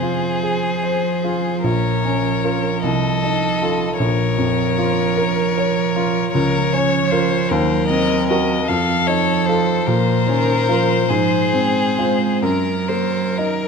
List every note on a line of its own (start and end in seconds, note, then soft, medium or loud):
0.00 1.60 F2 soft
0.00 0.26 C3 soft
0.00 3.96 F3 medium
0.00 0.68 F4 soft
0.00 1.63 G#4 soft
0.00 1.66 C5 soft
0.43 1.08 G#4 soft
0.84 1.48 C5 soft
1.24 1.64 F4 soft
1.64 2.80 A#1 medium
1.64 2.85 A#4 soft
1.64 2.83 C#5 soft
2.04 2.68 C#4 soft
2.44 2.80 F4 soft
2.44 2.80 A#4 soft
2.83 3.96 C2 medium
2.83 3.98 A4 soft
2.83 3.97 D#5 medium
3.24 3.84 D#4 soft
3.62 3.96 F4 soft
3.62 3.96 A4 soft
3.98 6.30 A#1 medium
3.98 6.31 F3 medium
3.98 6.30 A#4 medium
3.98 6.30 C#5 medium
4.38 5.00 F2 soft
4.78 5.40 F4 soft
5.17 5.80 A#4 soft
5.58 6.20 C#5 soft
5.96 6.35 F4 soft
6.33 7.47 C#2 medium
6.33 7.52 F3 medium
6.33 6.74 A#4 medium
6.33 7.53 C#5 medium
6.73 7.35 C#4 soft
6.73 7.12 C#5 medium
7.11 7.47 F4 soft
7.11 7.47 A#4 medium
7.11 7.51 C5 medium
7.49 8.65 D#2 medium
7.49 8.68 F#3 medium
7.49 8.67 A#4 medium
7.49 7.87 C5 medium
7.87 8.53 C4 soft
7.87 8.27 D#5 medium
8.29 8.65 F#4 soft
8.29 8.65 A#4 soft
8.29 8.70 D#5 medium
8.68 9.83 F2 medium
8.68 9.84 F3 medium
8.68 9.88 A4 medium
8.68 9.09 F5 medium
9.07 9.71 D#4 soft
9.07 9.47 C#5 medium
9.46 9.84 F4 soft
9.46 9.84 A4 soft
9.46 12.45 C5 medium
9.86 11.06 A#2 medium
9.86 10.27 F3 medium
9.86 11.10 A#4 medium
10.26 10.69 D#3 medium
10.26 10.93 C#4 soft
10.68 11.09 F3 medium
10.68 11.05 F4 soft
10.68 11.06 A#4 soft
11.09 12.39 G#2 medium
11.09 11.55 F3 medium
11.09 12.43 G#4 medium
11.53 11.98 G#3 soft
11.53 12.25 C4 soft
11.98 12.45 G#3 medium
11.98 12.39 F4 soft
11.98 12.39 C5 soft
12.42 13.68 F#2 medium
12.42 13.68 F#3 medium
12.42 12.90 A#4 medium
12.42 13.68 A#4 medium
12.88 13.68 A#3 soft
12.88 13.39 C5 soft
13.38 13.68 D#4 soft
13.38 13.68 A#4 medium
13.38 13.68 D#5 soft